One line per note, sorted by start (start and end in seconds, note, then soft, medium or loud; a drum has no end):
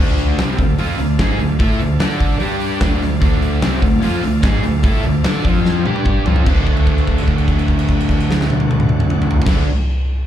0.00 0.36 D2 loud
0.00 0.38 D3 loud
0.00 0.38 A3 loud
0.00 0.38 D4 loud
0.00 0.11 F#4 medium
0.00 0.11 A#4 medium
0.00 0.11 D#5 medium
0.00 0.11 F#5 medium
0.09 2.38 F4 medium
0.09 2.37 A4 medium
0.09 2.38 D5 medium
0.09 2.38 F5 medium
0.18 open hi-hat medium
0.38 0.57 C2 loud
0.38 0.58 C3 medium
0.38 0.58 G3 loud
0.38 0.59 C4 loud
0.38 snare loud
0.38 open hi-hat medium
0.58 0.77 D2 loud
0.58 0.75 D3 medium
0.58 0.75 A3 medium
0.58 kick medium
0.58 open hi-hat medium
0.79 0.98 F2 medium
0.79 0.98 F3 medium
0.79 0.99 C4 medium
0.79 0.99 F4 medium
0.79 open hi-hat medium
0.98 1.18 D2 medium
0.98 1.15 D3 medium
0.98 1.16 A3 medium
0.98 open hi-hat medium
1.19 1.38 G#2 medium
1.19 1.39 G#3 loud
1.19 1.39 D#4 loud
1.19 1.39 G#4 loud
1.19 kick medium
1.19 snare loud
1.19 open hi-hat medium
1.39 1.58 D2 medium
1.39 1.55 D3 medium
1.39 1.56 A3 medium
1.39 open hi-hat medium
1.59 1.79 A2 medium
1.59 1.79 A3 medium
1.59 1.80 E4 loud
1.59 1.79 A4 loud
1.59 kick loud
1.59 open hi-hat medium
1.79 1.99 D2 medium
1.79 1.96 D3 medium
1.79 1.96 A3 medium
1.79 open hi-hat medium
1.99 2.38 D3 medium
1.99 2.39 D4 loud
1.99 2.40 A4 medium
1.99 2.39 D5 loud
1.99 snare loud
1.99 open hi-hat medium
2.20 kick medium
2.20 open hi-hat medium
2.39 2.78 G2 medium
2.39 2.80 G3 medium
2.39 2.80 D4 medium
2.39 2.81 D4 medium
2.39 2.80 G4 medium
2.39 2.81 G4 medium
2.39 2.80 D5 medium
2.39 2.80 G5 medium
2.39 open hi-hat medium
2.60 open hi-hat medium
2.80 3.00 D2 medium
2.80 3.00 D3 medium
2.80 3.00 A3 loud
2.80 3.01 D4 loud
2.80 5.43 F4 medium
2.80 5.43 A4 medium
2.80 5.42 D5 medium
2.80 5.42 F5 medium
2.80 kick medium
2.80 snare loud
2.80 open hi-hat medium
3.01 3.20 D2 medium
3.01 3.18 D3 medium
3.01 3.18 A3 medium
3.01 snare soft
3.01 open hi-hat medium
3.21 3.60 D2 loud
3.21 3.61 D3 loud
3.21 3.61 A3 loud
3.21 3.62 D4 loud
3.21 kick loud
3.21 open hi-hat medium
3.42 open hi-hat medium
3.61 3.81 C2 medium
3.61 3.81 C3 loud
3.61 3.82 G3 loud
3.61 3.82 C4 loud
3.61 snare loud
3.61 open hi-hat medium
3.82 4.02 D2 loud
3.82 3.99 D3 medium
3.82 3.99 A3 medium
3.82 kick medium
3.82 open hi-hat medium
4.00 4.22 F2 loud
4.00 4.21 F3 medium
4.00 4.22 C4 medium
4.00 4.22 F4 medium
4.00 open hi-hat medium
4.21 4.43 D2 medium
4.21 4.39 D3 medium
4.21 4.39 A3 medium
4.21 open hi-hat medium
4.42 4.62 G#2 loud
4.42 4.63 G#3 medium
4.42 4.63 D#4 loud
4.42 4.63 G#4 loud
4.42 kick medium
4.42 snare loud
4.42 open hi-hat medium
4.63 4.84 D2 medium
4.63 4.80 D3 medium
4.63 4.80 A3 medium
4.63 open hi-hat medium
4.83 5.03 A2 medium
4.83 5.03 A3 loud
4.83 5.04 E4 loud
4.83 5.04 A4 loud
4.83 kick loud
4.83 open hi-hat medium
5.03 5.24 D2 medium
5.03 5.21 D3 medium
5.03 5.21 A3 medium
5.03 open hi-hat medium
5.24 5.44 D3 loud
5.24 5.43 D4 loud
5.24 5.44 A4 loud
5.24 5.44 D5 loud
5.24 snare loud
5.24 open hi-hat medium
5.43 5.83 F2 loud
5.43 5.84 F3 loud
5.43 5.84 C4 medium
5.43 5.86 C4 medium
5.43 5.85 F4 loud
5.43 5.86 F4 medium
5.43 5.86 C5 medium
5.43 5.86 F5 medium
5.43 kick medium
5.43 open hi-hat medium
5.65 snare medium
5.85 6.23 G2 medium
5.85 6.25 G3 medium
5.85 6.25 D4 medium
5.85 6.27 D4 medium
5.85 6.26 G4 medium
5.85 6.27 G4 medium
5.85 6.27 D5 medium
5.85 6.27 G5 medium
5.85 high tom medium
5.96 high tom medium
6.05 kick medium
6.05 mid tom medium
6.25 6.46 F2 loud
6.25 6.44 F3 medium
6.25 6.45 C4 loud
6.25 6.46 F4 loud
6.25 floor tom loud
6.36 floor tom medium
6.44 9.38 D2 medium
6.44 9.44 D3 loud
6.44 9.45 F#3 loud
6.44 9.47 A3 loud
6.44 9.48 D4 loud
6.44 9.40 A4 medium
6.44 9.40 D5 medium
6.44 9.40 F#5 medium
6.44 kick loud
6.44 crash medium
6.49 9.40 F#4 medium
6.67 kick medium
6.67 crash soft
6.77 crash soft
6.87 kick medium
6.87 crash soft
6.98 crash soft
7.07 kick medium
7.07 crash soft
7.18 crash soft
7.28 kick medium
7.28 crash soft
7.38 crash medium
7.48 kick medium
7.48 crash medium
7.59 crash medium
7.68 kick medium
7.68 crash soft
7.79 crash medium
7.89 kick medium
7.89 crash medium
8.00 crash medium
8.09 kick medium
8.09 crash medium
8.20 crash medium
8.31 snare medium
8.41 snare loud
8.50 high tom loud
8.60 high tom medium
8.71 high tom loud
8.80 mid tom loud
8.89 mid tom medium
9.00 mid tom loud
9.10 mid tom loud
9.22 mid tom loud
9.31 floor tom loud
9.42 9.64 D3 medium
9.42 floor tom loud
9.46 9.64 D2 loud
9.46 9.65 F#3 medium
9.46 9.66 A3 medium
9.46 9.66 D4 loud
9.46 9.66 F#4 medium
9.46 9.65 A4 medium
9.46 9.66 D5 medium
9.46 9.65 F#5 medium
9.46 kick loud
9.46 snare loud
9.46 crash loud